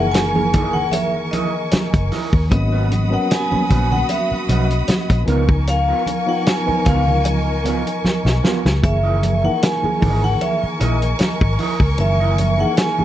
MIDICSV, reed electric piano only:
0, 0, Header, 1, 2, 480
1, 0, Start_track
1, 0, Tempo, 789474
1, 1529, Time_signature, 4, 2, 24, 8
1, 7933, End_track
2, 0, Start_track
2, 0, Title_t, "Reed electric piano"
2, 0, Program_c, 0, 4
2, 0, Control_c, 0, 64, 127
2, 0, Note_on_c, 0, 51, 68
2, 0, Note_on_c, 0, 52, 73
2, 0, Note_on_c, 0, 58, 70
2, 0, Note_on_c, 0, 63, 64
2, 0, Note_on_c, 0, 68, 83
2, 139, Note_off_c, 0, 52, 0
2, 142, Note_off_c, 0, 58, 0
2, 144, Note_off_c, 0, 63, 0
2, 147, Note_off_c, 0, 68, 0
2, 201, Note_on_c, 0, 52, 73
2, 208, Note_on_c, 0, 58, 75
2, 212, Note_off_c, 0, 51, 0
2, 212, Note_on_c, 0, 51, 73
2, 217, Note_on_c, 0, 68, 80
2, 898, Note_off_c, 0, 52, 0
2, 902, Note_off_c, 0, 58, 0
2, 904, Note_off_c, 0, 51, 0
2, 906, Note_off_c, 0, 68, 0
2, 1518, Note_on_c, 0, 54, 81
2, 1523, Note_on_c, 0, 59, 70
2, 1529, Note_on_c, 0, 61, 73
2, 1535, Note_on_c, 0, 58, 88
2, 1536, Control_c, 0, 64, 0
2, 1630, Control_c, 0, 64, 127
2, 1784, Note_off_c, 0, 54, 0
2, 1787, Note_off_c, 0, 59, 0
2, 1790, Note_off_c, 0, 61, 0
2, 1793, Note_off_c, 0, 58, 0
2, 1888, Note_on_c, 0, 54, 85
2, 1892, Note_on_c, 0, 59, 74
2, 1897, Note_on_c, 0, 61, 77
2, 1902, Note_on_c, 0, 70, 86
2, 2061, Note_off_c, 0, 54, 0
2, 2063, Note_off_c, 0, 59, 0
2, 2065, Note_off_c, 0, 61, 0
2, 2068, Note_off_c, 0, 70, 0
2, 2131, Note_on_c, 0, 54, 74
2, 2132, Note_on_c, 0, 59, 64
2, 2140, Note_on_c, 0, 61, 74
2, 2147, Note_on_c, 0, 58, 81
2, 2824, Note_off_c, 0, 54, 0
2, 2824, Note_off_c, 0, 59, 0
2, 2828, Note_off_c, 0, 61, 0
2, 2832, Note_off_c, 0, 58, 0
2, 3194, Note_on_c, 0, 53, 77
2, 3202, Note_on_c, 0, 59, 72
2, 3206, Note_on_c, 0, 63, 70
2, 3210, Note_on_c, 0, 70, 83
2, 3219, Control_c, 0, 64, 0
2, 3310, Control_c, 0, 64, 127
2, 3682, Note_off_c, 0, 53, 0
2, 3686, Note_off_c, 0, 59, 0
2, 3688, Note_off_c, 0, 63, 0
2, 3690, Note_off_c, 0, 70, 0
2, 3809, Note_on_c, 0, 53, 76
2, 3814, Note_on_c, 0, 59, 67
2, 3816, Note_on_c, 0, 63, 70
2, 3822, Note_on_c, 0, 65, 84
2, 3981, Note_off_c, 0, 53, 0
2, 3984, Note_off_c, 0, 59, 0
2, 3985, Note_off_c, 0, 63, 0
2, 3988, Note_off_c, 0, 65, 0
2, 4048, Note_on_c, 0, 52, 62
2, 4052, Note_on_c, 0, 59, 74
2, 4055, Note_on_c, 0, 63, 67
2, 4061, Note_on_c, 0, 70, 79
2, 4086, Note_on_c, 0, 53, 71
2, 4090, Note_off_c, 0, 52, 0
2, 4744, Note_off_c, 0, 59, 0
2, 4746, Note_off_c, 0, 63, 0
2, 4749, Note_off_c, 0, 70, 0
2, 4761, Note_off_c, 0, 53, 0
2, 5364, Note_on_c, 0, 52, 73
2, 5368, Note_on_c, 0, 58, 71
2, 5373, Note_on_c, 0, 51, 65
2, 5376, Control_c, 0, 64, 0
2, 5380, Note_on_c, 0, 68, 75
2, 5480, Control_c, 0, 64, 127
2, 5628, Note_off_c, 0, 52, 0
2, 5630, Note_off_c, 0, 58, 0
2, 5632, Note_off_c, 0, 51, 0
2, 5636, Note_off_c, 0, 68, 0
2, 5737, Note_on_c, 0, 52, 75
2, 5738, Note_on_c, 0, 58, 68
2, 5742, Note_on_c, 0, 63, 71
2, 5749, Note_on_c, 0, 70, 84
2, 5906, Note_off_c, 0, 52, 0
2, 5906, Note_off_c, 0, 58, 0
2, 5908, Note_off_c, 0, 63, 0
2, 5912, Note_off_c, 0, 70, 0
2, 5974, Note_on_c, 0, 52, 68
2, 5979, Note_on_c, 0, 58, 65
2, 5983, Note_on_c, 0, 51, 67
2, 5990, Note_on_c, 0, 68, 89
2, 6665, Note_off_c, 0, 52, 0
2, 6668, Note_off_c, 0, 58, 0
2, 6670, Note_off_c, 0, 51, 0
2, 6673, Note_off_c, 0, 68, 0
2, 7283, Note_on_c, 0, 52, 75
2, 7290, Note_on_c, 0, 58, 63
2, 7294, Note_on_c, 0, 51, 70
2, 7299, Note_on_c, 0, 70, 79
2, 7547, Note_off_c, 0, 52, 0
2, 7551, Note_off_c, 0, 58, 0
2, 7552, Note_off_c, 0, 51, 0
2, 7555, Note_off_c, 0, 70, 0
2, 7649, Note_on_c, 0, 52, 72
2, 7656, Note_on_c, 0, 58, 70
2, 7660, Note_on_c, 0, 63, 74
2, 7667, Note_on_c, 0, 68, 82
2, 7821, Note_off_c, 0, 52, 0
2, 7825, Note_off_c, 0, 58, 0
2, 7827, Note_off_c, 0, 63, 0
2, 7830, Note_off_c, 0, 68, 0
2, 7891, Note_on_c, 0, 52, 70
2, 7896, Note_on_c, 0, 58, 67
2, 7899, Note_on_c, 0, 51, 66
2, 7904, Note_on_c, 0, 67, 72
2, 7933, Note_off_c, 0, 51, 0
2, 7933, Note_off_c, 0, 52, 0
2, 7933, Note_off_c, 0, 58, 0
2, 7933, Note_off_c, 0, 67, 0
2, 7933, End_track
0, 0, End_of_file